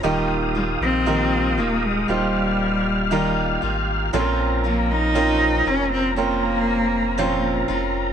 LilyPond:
<<
  \new Staff \with { instrumentName = "Tonewheel organ" } { \time 4/4 \key ees \dorian \tempo 4 = 59 << { ees'''2 f'''2 | r1 | } \\ { <g' f''>1 | <bes' bes''>1 | } >> }
  \new Staff \with { instrumentName = "Grand piano" } { \time 4/4 \key ees \dorian <ees' f' g' bes'>4 <ees' f' g' bes'>4 <ees' f' g' c''>4 <ees' f' g' bes'>4 | <c' des' f' a' bes'>4 <c' des' f' bes'>4 <c' des' f' bes'>4 <c' des' f' c''>4 | }
  \new Staff \with { instrumentName = "Grand piano" } { \clef bass \time 4/4 \key ees \dorian ees4. r2 r8 | bes,4. r2 r8 | }
  \new Staff \with { instrumentName = "Steel-string acoustic guitar" } { \time 4/4 \key ees \dorian <ees g bes ees' f'>8 <bes ees' f'>8 <ees g bes ees' f'>8 <bes ees' f'>8 <g bes ees' f'>4 <ees g bes ees' f'>8 <bes ees' f'>8 | <bes, f c' des' f'>8 <c' des' f'>8 <bes, f c' des' f'>8 <c' des' f'>8 <f c' des' f'>4 <bes, f c' des' f'>8 <c' des' f'>8 | }
  \new Staff \with { instrumentName = "Cello" } { \time 4/4 \key ees \dorian r8 g16 c'8. bes16 aes16 g4. r8 | r8 bes16 ees'8. des'16 c'16 bes4. r8 | }
  \new Staff \with { instrumentName = "Sub bass" } { \clef bass \time 4/4 \key ees \dorian ees,,8. bes,,8. ees,,8 ees,,4. aes,,8 | bes,,4. f,,2 f,,8 | }
>>